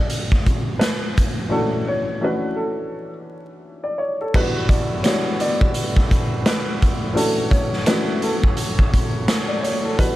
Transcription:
0.00 0.29 D5 medium
0.10 closed hi-hat medium
0.32 kick loud
0.32 snare soft
0.47 kick medium
0.47 closed hi-hat medium
0.79 1.12 B4 medium
0.79 finger snap medium
0.79 snare loud
0.79 closed hi-hat medium
1.18 kick medium
1.18 closed hi-hat medium
1.49 2.13 E3 medium
1.49 2.13 A3 medium
1.49 2.14 C#4 medium
1.49 2.14 D4 medium
1.49 2.14 F#4 medium
1.49 1.84 A4 medium
1.88 2.19 C#5 medium
2.21 3.46 E3 medium
2.21 3.47 A3 medium
2.21 3.47 C#4 medium
2.21 3.47 D4 medium
2.21 3.48 F#4 medium
2.21 2.55 B4 medium
2.56 3.10 A4 medium
3.84 3.97 D5 medium
3.98 4.19 C#5 medium
4.21 4.54 A4 medium
4.34 10.16 D3 medium
4.34 4.97 E3 medium
4.34 4.97 G3 medium
4.34 7.14 G3 medium
4.34 4.98 B3 medium
4.34 7.14 B3 medium
4.34 4.98 D4 medium
4.34 7.14 E4 medium
4.34 10.16 F#4 medium
4.34 4.98 F#4 medium
4.34 4.67 B4 medium
4.34 kick loud
4.34 crash medium
4.69 5.01 D5 medium
4.69 kick loud
4.69 closed hi-hat medium
5.03 6.29 E3 medium
5.03 6.29 G3 medium
5.03 6.29 B3 medium
5.03 6.30 D4 medium
5.03 6.30 F#4 medium
5.03 5.36 C#5 medium
5.03 finger snap medium
5.03 snare loud
5.03 closed hi-hat loud
5.40 5.94 D5 medium
5.40 closed hi-hat medium
5.61 kick loud
5.74 closed hi-hat loud
5.97 kick medium
5.97 snare soft
6.11 kick medium
6.11 closed hi-hat medium
6.46 6.78 B4 medium
6.46 finger snap medium
6.46 snare loud
6.46 closed hi-hat medium
6.82 kick medium
6.82 closed hi-hat medium
7.14 7.78 E3 medium
7.14 7.78 A3 medium
7.14 7.79 C#4 medium
7.14 7.79 D4 medium
7.14 7.79 F#4 medium
7.14 7.48 A4 medium
7.14 closed hi-hat loud
7.18 9.97 F#3 medium
7.18 9.97 A3 medium
7.18 9.97 C#5 medium
7.50 7.83 C#5 medium
7.50 kick loud
7.50 closed hi-hat medium
7.73 snare soft
7.86 9.11 E3 medium
7.86 9.12 A3 medium
7.86 9.12 C#4 medium
7.86 9.12 D4 medium
7.86 9.12 F#4 medium
7.86 8.19 B4 medium
7.86 finger snap medium
7.86 snare loud
7.86 closed hi-hat loud
8.22 8.76 A4 medium
8.22 closed hi-hat medium
8.44 kick loud
8.57 closed hi-hat loud
8.79 kick medium
8.94 kick loud
8.94 closed hi-hat medium
9.28 finger snap medium
9.28 snare loud
9.28 closed hi-hat medium
9.48 9.62 D5 medium
9.62 9.83 C#5 medium
9.62 closed hi-hat medium
9.85 10.16 A4 medium
9.98 10.16 E3 medium
9.98 10.16 G3 medium
9.98 10.16 B3 medium
9.98 10.16 D4 medium
9.98 10.16 E4 medium
9.98 10.16 F#4 medium
9.98 10.16 B4 loud
9.98 kick loud
9.98 closed hi-hat loud

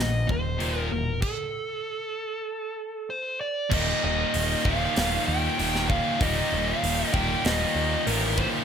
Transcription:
0.00 0.27 A#1 medium
0.00 0.24 D#2 medium
0.00 0.24 A#2 medium
0.00 0.30 D#5 loud
0.27 0.58 D#1 medium
0.27 0.56 D#2 medium
0.27 0.56 A#2 medium
0.27 kick medium
0.32 0.80 C5 medium
0.58 0.89 D#1 medium
0.58 0.88 D#2 medium
0.58 0.88 A#2 medium
0.58 0.89 D#3 medium
0.58 open hi-hat soft
0.80 0.92 A#4 medium
0.91 1.20 E1 medium
0.91 1.19 D#2 medium
0.91 1.19 A#2 medium
0.91 1.22 A#4 medium
1.22 3.37 A4 medium
1.22 kick medium
1.22 crash medium
3.10 3.40 C5 medium
3.41 3.69 D5 medium
3.71 3.92 D#1 medium
3.71 4.65 D#2 medium
3.71 4.63 A#2 medium
3.71 4.64 D#3 loud
3.71 4.64 G3 loud
3.71 4.63 G4 loud
3.71 4.04 D#5 medium
3.71 kick loud
3.71 crash loud
4.04 4.23 D#1 medium
4.04 4.68 D#5 medium
4.34 4.54 D#1 medium
4.34 open hi-hat medium
4.63 4.85 D#1 medium
4.63 5.56 D#2 medium
4.63 5.56 A#2 medium
4.63 5.56 D#3 medium
4.63 6.18 G3 medium
4.63 6.18 G4 medium
4.63 5.27 F5 loud
4.63 kick medium
4.96 5.16 D#1 medium
4.96 snare loud
4.96 open hi-hat medium
5.28 5.47 D#2 medium
5.28 5.89 G5 loud
5.57 5.98 D#1 medium
5.57 6.18 D#2 medium
5.57 6.19 A#2 medium
5.57 6.19 D#3 medium
5.57 open hi-hat medium
5.75 snare soft
5.90 6.21 F5 medium
5.90 kick medium
6.19 6.40 D#1 loud
6.19 7.11 D#2 medium
6.19 7.12 A#2 medium
6.19 7.11 D#3 loud
6.19 7.12 G3 loud
6.19 7.11 G4 loud
6.19 6.69 D#5 medium
6.19 kick loud
6.19 open hi-hat medium
6.52 6.71 D#1 medium
6.68 7.13 F5 medium
6.83 7.02 D#1 medium
6.83 open hi-hat medium
7.12 7.33 D#1 medium
7.12 8.04 D#2 medium
7.12 8.05 A#2 medium
7.12 8.04 D#3 loud
7.12 8.64 G3 medium
7.12 8.64 G4 medium
7.12 7.46 G5 medium
7.12 kick medium
7.44 7.64 D#1 loud
7.44 8.09 D#5 medium
7.44 snare loud
7.44 open hi-hat medium
7.75 7.95 D#2 medium
8.05 8.46 A1 medium
8.05 8.64 D#2 medium
8.05 8.64 A#2 medium
8.05 8.64 D#3 medium
8.05 8.39 A#4 medium
8.05 open hi-hat medium
8.38 8.46 C5 medium
8.38 kick medium

